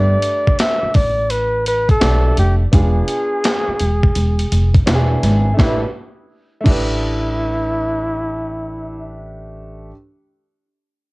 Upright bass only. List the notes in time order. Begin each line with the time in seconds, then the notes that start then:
Already playing: G1
0.83 muted upright bass stroke
0.95 A1
2.02 B1
2.38 F1
2.73 E1
3.68 muted upright bass stroke
3.81 E1
4.16 E1
4.52 F1
4.87 E1
5.23 G#1
5.59 A1
6.66 A1